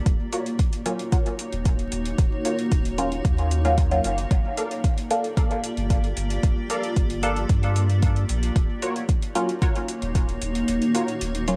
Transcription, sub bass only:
0, 0, Header, 1, 2, 480
1, 0, Start_track
1, 0, Tempo, 530973
1, 55, Time_signature, 4, 2, 24, 8
1, 10453, End_track
2, 0, Start_track
2, 0, Title_t, "Sub bass"
2, 0, Program_c, 0, 38
2, 55, Note_on_c, 0, 27, 97
2, 154, Note_off_c, 0, 27, 0
2, 1378, Note_on_c, 0, 27, 102
2, 1699, Note_off_c, 0, 27, 0
2, 1735, Note_on_c, 0, 27, 93
2, 1929, Note_off_c, 0, 27, 0
2, 1975, Note_on_c, 0, 27, 99
2, 2074, Note_off_c, 0, 27, 0
2, 2455, Note_on_c, 0, 27, 89
2, 2899, Note_off_c, 0, 27, 0
2, 2935, Note_on_c, 0, 39, 79
2, 3619, Note_off_c, 0, 39, 0
2, 3655, Note_on_c, 0, 30, 86
2, 3849, Note_off_c, 0, 30, 0
2, 3895, Note_on_c, 0, 31, 103
2, 3994, Note_off_c, 0, 31, 0
2, 5218, Note_on_c, 0, 31, 103
2, 5539, Note_off_c, 0, 31, 0
2, 5575, Note_on_c, 0, 31, 97
2, 5769, Note_off_c, 0, 31, 0
2, 5815, Note_on_c, 0, 31, 101
2, 5914, Note_off_c, 0, 31, 0
2, 6295, Note_on_c, 0, 31, 86
2, 6739, Note_off_c, 0, 31, 0
2, 6775, Note_on_c, 0, 43, 83
2, 7459, Note_off_c, 0, 43, 0
2, 7495, Note_on_c, 0, 34, 86
2, 7689, Note_off_c, 0, 34, 0
2, 7736, Note_on_c, 0, 27, 102
2, 7834, Note_off_c, 0, 27, 0
2, 9058, Note_on_c, 0, 27, 101
2, 9379, Note_off_c, 0, 27, 0
2, 9415, Note_on_c, 0, 27, 99
2, 9609, Note_off_c, 0, 27, 0
2, 9655, Note_on_c, 0, 27, 100
2, 9754, Note_off_c, 0, 27, 0
2, 10135, Note_on_c, 0, 27, 90
2, 10453, Note_off_c, 0, 27, 0
2, 10453, End_track
0, 0, End_of_file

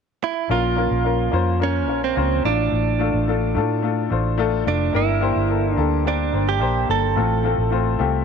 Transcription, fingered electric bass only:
0, 0, Header, 1, 2, 480
1, 0, Start_track
1, 0, Tempo, 556070
1, 430, Time_signature, 4, 2, 24, 8
1, 7119, End_track
2, 0, Start_track
2, 0, Title_t, "Fingered electric bass"
2, 0, Program_c, 0, 33
2, 428, Note_on_c, 0, 34, 75
2, 764, Note_off_c, 0, 34, 0
2, 787, Note_on_c, 0, 34, 74
2, 1123, Note_off_c, 0, 34, 0
2, 1148, Note_on_c, 0, 41, 75
2, 1629, Note_off_c, 0, 41, 0
2, 1629, Note_on_c, 0, 34, 76
2, 1852, Note_off_c, 0, 34, 0
2, 1871, Note_on_c, 0, 37, 84
2, 2094, Note_off_c, 0, 37, 0
2, 2111, Note_on_c, 0, 33, 77
2, 2334, Note_off_c, 0, 33, 0
2, 2350, Note_on_c, 0, 33, 82
2, 2685, Note_off_c, 0, 33, 0
2, 2708, Note_on_c, 0, 33, 73
2, 3070, Note_on_c, 0, 45, 78
2, 3083, Note_off_c, 0, 33, 0
2, 3516, Note_off_c, 0, 45, 0
2, 3548, Note_on_c, 0, 33, 69
2, 3995, Note_off_c, 0, 33, 0
2, 4029, Note_on_c, 0, 29, 79
2, 4252, Note_off_c, 0, 29, 0
2, 4269, Note_on_c, 0, 31, 85
2, 4604, Note_off_c, 0, 31, 0
2, 4625, Note_on_c, 0, 31, 74
2, 4962, Note_off_c, 0, 31, 0
2, 4987, Note_on_c, 0, 38, 78
2, 5434, Note_off_c, 0, 38, 0
2, 5465, Note_on_c, 0, 31, 73
2, 5707, Note_off_c, 0, 31, 0
2, 5707, Note_on_c, 0, 34, 88
2, 5931, Note_off_c, 0, 34, 0
2, 5949, Note_on_c, 0, 31, 81
2, 6172, Note_off_c, 0, 31, 0
2, 6186, Note_on_c, 0, 33, 81
2, 6522, Note_off_c, 0, 33, 0
2, 6544, Note_on_c, 0, 33, 74
2, 6881, Note_off_c, 0, 33, 0
2, 6904, Note_on_c, 0, 36, 75
2, 7119, Note_off_c, 0, 36, 0
2, 7119, End_track
0, 0, End_of_file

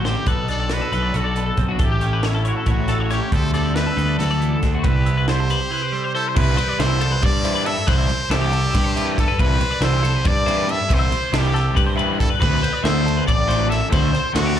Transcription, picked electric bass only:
0, 0, Header, 1, 2, 480
1, 0, Start_track
1, 0, Tempo, 435414
1, 302, Time_signature, 7, 3, 24, 8
1, 6541, Tempo, 431655
1, 16175, End_track
2, 0, Start_track
2, 0, Title_t, "Picked electric bass"
2, 0, Program_c, 0, 34
2, 0, Note_on_c, 0, 33, 79
2, 164, Note_off_c, 0, 33, 0
2, 293, Note_on_c, 0, 35, 91
2, 883, Note_off_c, 0, 35, 0
2, 1015, Note_on_c, 0, 35, 72
2, 1214, Note_off_c, 0, 35, 0
2, 1261, Note_on_c, 0, 35, 74
2, 1652, Note_off_c, 0, 35, 0
2, 1739, Note_on_c, 0, 35, 83
2, 1936, Note_off_c, 0, 35, 0
2, 1980, Note_on_c, 0, 33, 85
2, 2763, Note_off_c, 0, 33, 0
2, 2937, Note_on_c, 0, 33, 70
2, 3525, Note_off_c, 0, 33, 0
2, 3661, Note_on_c, 0, 38, 87
2, 4248, Note_off_c, 0, 38, 0
2, 4382, Note_on_c, 0, 38, 82
2, 4578, Note_off_c, 0, 38, 0
2, 4626, Note_on_c, 0, 38, 79
2, 5015, Note_off_c, 0, 38, 0
2, 5105, Note_on_c, 0, 38, 82
2, 5299, Note_off_c, 0, 38, 0
2, 5339, Note_on_c, 0, 36, 93
2, 6119, Note_off_c, 0, 36, 0
2, 7022, Note_on_c, 0, 36, 94
2, 7217, Note_off_c, 0, 36, 0
2, 7499, Note_on_c, 0, 36, 83
2, 7891, Note_off_c, 0, 36, 0
2, 7979, Note_on_c, 0, 43, 90
2, 8566, Note_off_c, 0, 43, 0
2, 8703, Note_on_c, 0, 36, 99
2, 8899, Note_off_c, 0, 36, 0
2, 9171, Note_on_c, 0, 36, 88
2, 9566, Note_off_c, 0, 36, 0
2, 9665, Note_on_c, 0, 43, 96
2, 10250, Note_off_c, 0, 43, 0
2, 10387, Note_on_c, 0, 36, 103
2, 10580, Note_off_c, 0, 36, 0
2, 10847, Note_on_c, 0, 36, 99
2, 11243, Note_off_c, 0, 36, 0
2, 11346, Note_on_c, 0, 43, 96
2, 11930, Note_off_c, 0, 43, 0
2, 12065, Note_on_c, 0, 36, 100
2, 12259, Note_off_c, 0, 36, 0
2, 12541, Note_on_c, 0, 36, 99
2, 12931, Note_off_c, 0, 36, 0
2, 13026, Note_on_c, 0, 43, 87
2, 13610, Note_off_c, 0, 43, 0
2, 13753, Note_on_c, 0, 38, 98
2, 13944, Note_off_c, 0, 38, 0
2, 14219, Note_on_c, 0, 38, 93
2, 14610, Note_off_c, 0, 38, 0
2, 14710, Note_on_c, 0, 33, 94
2, 15292, Note_off_c, 0, 33, 0
2, 15426, Note_on_c, 0, 38, 102
2, 15620, Note_off_c, 0, 38, 0
2, 15901, Note_on_c, 0, 38, 89
2, 16175, Note_off_c, 0, 38, 0
2, 16175, End_track
0, 0, End_of_file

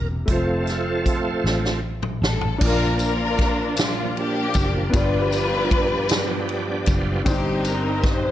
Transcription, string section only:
0, 0, Header, 1, 2, 480
1, 0, Start_track
1, 0, Key_signature, -2, "major"
1, 0, Tempo, 775194
1, 172, Time_signature, 6, 3, 24, 8
1, 5148, End_track
2, 0, Start_track
2, 0, Title_t, "String section"
2, 0, Program_c, 0, 48
2, 1389, Note_on_c, 0, 69, 84
2, 1606, Note_off_c, 0, 69, 0
2, 1627, Note_on_c, 0, 70, 108
2, 1632, Note_on_c, 0, 65, 71
2, 1635, Note_on_c, 0, 62, 70
2, 1861, Note_off_c, 0, 65, 0
2, 1861, Note_off_c, 0, 70, 0
2, 1867, Note_off_c, 0, 62, 0
2, 1869, Note_on_c, 0, 65, 76
2, 1869, Note_on_c, 0, 70, 106
2, 1875, Note_on_c, 0, 62, 80
2, 2317, Note_off_c, 0, 70, 0
2, 2338, Note_off_c, 0, 65, 0
2, 2346, Note_on_c, 0, 65, 91
2, 2560, Note_off_c, 0, 62, 0
2, 2564, Note_off_c, 0, 65, 0
2, 2585, Note_on_c, 0, 62, 75
2, 2585, Note_on_c, 0, 67, 111
2, 2590, Note_on_c, 0, 58, 76
2, 3035, Note_off_c, 0, 62, 0
2, 3037, Note_off_c, 0, 58, 0
2, 3060, Note_off_c, 0, 67, 0
2, 3064, Note_on_c, 0, 71, 125
2, 3065, Note_on_c, 0, 62, 84
2, 3068, Note_on_c, 0, 65, 85
2, 4234, Note_off_c, 0, 62, 0
2, 4234, Note_off_c, 0, 71, 0
2, 4236, Note_off_c, 0, 65, 0
2, 4509, Note_on_c, 0, 63, 69
2, 4511, Note_on_c, 0, 60, 69
2, 4511, Note_on_c, 0, 67, 96
2, 4726, Note_off_c, 0, 67, 0
2, 4741, Note_on_c, 0, 70, 83
2, 4967, Note_on_c, 0, 72, 92
2, 4977, Note_off_c, 0, 70, 0
2, 5148, Note_off_c, 0, 60, 0
2, 5148, Note_off_c, 0, 63, 0
2, 5148, Note_off_c, 0, 72, 0
2, 5148, End_track
0, 0, End_of_file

